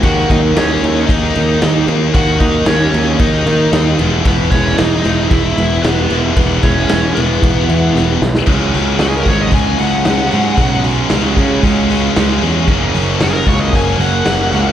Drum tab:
CC |----------------|----------------|----------------|----------------|
RD |x-x-x-x-x-x-x-x-|x-x-x-x-x-x-x-x-|x-x-x-x-x-x-x-x-|x-x-x-x-x-x-----|
HH |----------------|----------------|----------------|----------------|
SD |----o-------o---|----o-------o---|----o-o-----o---|----o-------o-oo|
BD |o-o-----o-------|o-o-----o-------|o-o-----o-------|o-o-----o-------|

CC |x---------------|----------------|x---------------|
RD |----------------|----------------|----------------|
HH |--o-o-o-o-o-o-o-|o-o-o-o-o-o-o-o-|--o-o-o-o-o-o-o-|
SD |----o-------o---|----o-------o---|----o-------o---|
BD |o-----o-o-------|o-----o-o-------|o-----o-o-------|